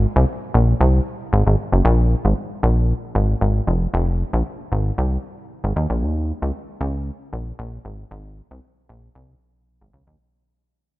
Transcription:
analog synth bass
0.16 C2
0.54 A#1
0.81 C2
1.33 G#1
1.47 G#1
1.72 F#1
1.85 A#1
2.25 G#1
2.63 A#1
3.15 G#1
3.41 G#1
3.67 F1
3.94 F1
4.33 A#1
4.72 G#1
4.98 C2
5.64 G#1
5.76 D#2
5.90 A#1
6.02 D#2
6.42 C#2
6.81 C#2
7.33 A#1
7.59 A#1
7.85 G#1
8.11 G#1
8.51 C2
8.89 A#1
9.15 C2
9.81 G#1
9.93 C#2
10.07 D#2

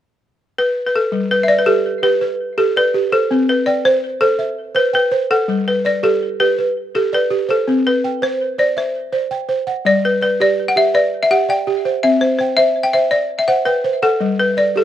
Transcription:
balafon
0.58 B4
0.87 B4
0.96 A4
1.12 G3
1.31 B4
1.43 E5
1.48 D5
1.59 B4
1.66 G4 A4
2.03 G4 B4
2.21 B4
2.58 G4 A4
2.76 B4 D5
2.94 G4
3.12 A4 C5
3.31 C4
3.49 B4
3.66 D5 G5
3.85 C5
4.21 A4 C5
4.39 E5
4.75 B4 C5
4.93 B4 G5
5.11 C5
5.31 A4 F#5
5.48 G3
5.68 B4
5.85 D5
6.03 G4 A4
6.40 G4 B4
6.58 B4
6.95 G4 A4
7.13 B4 D5
7.30 G4
7.49 A4 C5
7.68 C4
7.87 B4
8.04 G5
8.22 C5
8.58 C5 D5
8.77 C5 E5
9.12 C5
9.31 G5
9.49 C5
9.67 F#5
9.85 G3 D5
10.05 B4
10.21 B4 D5
10.40 G4 D5
10.68 F#5
10.76 G4 E5
10.94 B4 D5
11.23 E5
11.31 G4 F#5
11.49 D5 G5
11.67 G4
11.85 C5
12.03 C4 E5
12.21 C5
12.39 C5 G5
12.57 C5 E5
12.83 G5
12.93 C5 E5
13.11 D5 E5
13.39 E5
13.48 C5 F#5
13.65 B4 G5
13.84 C5
14.02 A4 F#5
14.21 G3
14.39 B4
14.57 D5
14.76 G4 A4

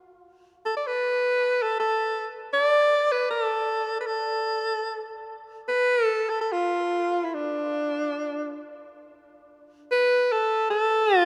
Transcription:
alto saxophone
0.66 A4
0.77 D5
0.87 B4
1.62 A4
1.80 A4
2.53 D5
3.12 B4
3.31 A4
4.01 B4
4.07 A4
5.69 B4
6.05 A4
6.30 A4
6.41 A4
6.52 F4
7.24 E4
7.34 D4
9.92 B4
10.32 A4
10.71 A4
11.20 F4

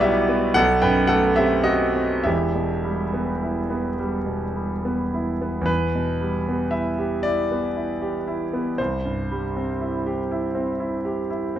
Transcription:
grand piano
Already playing: B1 B2 G3 B3 F#4 G4 B4 D5 F#5
0.00 E4 G4 E5
0.29 B3
0.54 B1 A4 F#5
0.82 F#2 B4 G5
1.07 A3 A4 F#5
1.36 C4 G4 E5
1.64 F#4 D#5
1.96 C4
2.24 E1 E2 G4 E5
2.55 B2
2.84 G3
3.14 B3
3.43 E4
3.70 B3
3.99 G3
4.26 B2
4.56 G3
4.85 B3
5.14 E4
5.41 B3
5.61 E2
5.66 B4
5.95 B2
6.21 G3
6.48 B3
6.71 E4 E5
6.99 G4
7.23 E4 D5
7.52 B3
7.76 E4
8.02 G4
8.28 E4
8.54 B3
8.78 C2 C5
9.05 G2
9.31 G3
9.57 C4
9.81 E4
10.06 G4
10.32 E4
10.55 C4
10.80 E4
11.05 G4
11.30 E4
11.56 C4

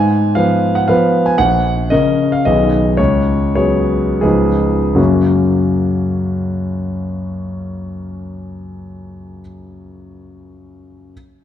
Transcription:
grand piano
Already playing: G#2 G#5
0.35 F3 B3 B4 F5
0.75 F#5
0.88 F3 B3 B4 F5
1.26 G#5
1.38 A#1 F#5
1.90 C#3 C#4 A#4 D#5
2.32 F5
2.45 B1 D#3 B3 G#4 D#5
2.97 C#2 C#5
3.55 F#3 B3 G#4 C#5
4.21 C#2 F3 B3 D#4 G#4
4.95 F#2 C#3 A#3 C#4 F#4

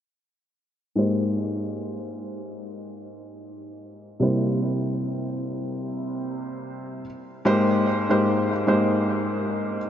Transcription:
felt piano
0.95 G#2 G#3 A#3 G4 C5
4.20 C3 G3 A#3 E4 C5
7.45 G#2 G#3 A#3 G4 C5
8.09 G#2 G#3 A#3 G4 C5
8.67 G#2 G#3 A#3 G4 C5

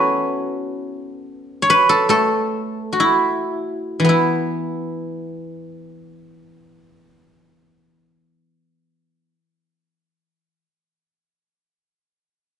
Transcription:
guzheng
Already playing: B3 C#4 E4 F#4 A4 B4 C#5
1.62 C#5
1.70 B4
1.89 A4
2.09 A3 A4
2.93 F#4
3.00 E4
4.00 E3
4.05 B3
4.09 E4

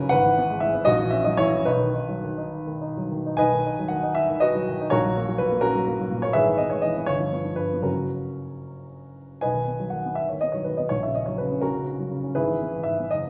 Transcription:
grand piano
Already playing: A#1 C#3 F#3 D#4 F#4 A#4 B4 C#5
0.00 C#4
0.09 G#1 B4 F#5
0.25 E3
0.38 B3
0.50 G#3
0.60 E3 G#4 E5
0.75 B3
0.85 A#1 F#4 D#5
0.99 E3
1.10 C#4 E5
1.24 F#3 D#5
1.37 E3 E4 C#5
1.53 C#4
1.65 B1 D#4 B4
1.81 D#3
1.94 D#4
2.09 F#3
2.24 D#3
2.38 D#4
2.67 D#3
2.81 D#4
2.98 F#3
3.11 D#3
3.26 D#4
3.37 B1 B4 D#5 G#5
3.53 D#3
3.66 D#4
3.79 F#3
3.88 D#3 F#5
4.03 D#4
4.15 E5
4.30 D#3
4.40 D#4 F#4 B4 D#5
4.55 F#3
4.68 D#3
4.81 D#4
4.90 A#1 F#4 A#4 C#5
5.05 F#3
5.17 A#3
5.29 F#3
5.38 A#2 B4
5.52 A#3
5.61 C#4 F#4 A#4
5.75 F#3
5.87 A#3
6.00 F#3
6.11 A#2
6.22 A#3 C#5
6.33 G#1 G#4 B4 E5
6.47 E3
6.58 B3 D#5
6.70 G#3 C#5
6.82 E3 D#5
6.97 B3
7.06 G1 C#5
7.20 F3
7.32 B3
7.45 F3
7.56 G2 B4
7.73 B3
7.80 F#1 C#3 F#3 F#4 A#4
7.84 C#4
9.41 B1 B4 D#5 G#5
9.54 D#3
9.67 B3
9.80 F#3
9.90 D#3 F#5
10.06 B3
10.15 E5
10.29 D#3 C#5
10.41 B3 D#5
10.52 F#3 C#5
10.64 D#3 B4
10.77 B3 D#5
10.89 A#1 C#5
11.03 C#3 E5
11.15 C#4 D#5
11.26 F#3 C#5
11.38 C#3 B4
11.52 C#4
11.61 C#4 F#4 A#4
11.74 C#3
11.87 C#4
11.99 F#3
12.11 C#3
12.23 C#4
12.35 G#1 E4 G#4 B4
12.48 E3
12.62 B3
12.74 E3
12.83 G#2 E5
13.00 B3
13.11 F#1 D#5

